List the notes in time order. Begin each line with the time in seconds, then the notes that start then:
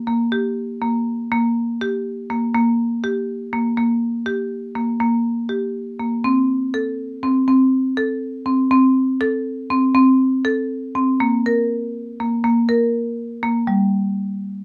0.07 A#3
0.32 G4
0.82 A#3
1.32 A#3
1.81 G4
2.30 A#3
2.55 A#3
3.04 G4
3.53 A#3
3.78 A#3
4.26 G4
4.76 A#3
5.00 A#3
5.49 G4
5.99 A#3
6.24 C4
6.74 A4
7.23 C4
7.48 C4
7.97 A4
8.46 C4
8.71 C4
9.21 A4
9.70 C4
9.95 C4
10.45 A4
10.95 C4
11.20 A#3
11.46 A#4
12.20 A#3
12.44 A#3
12.69 A#4
13.43 A#3
13.67 G3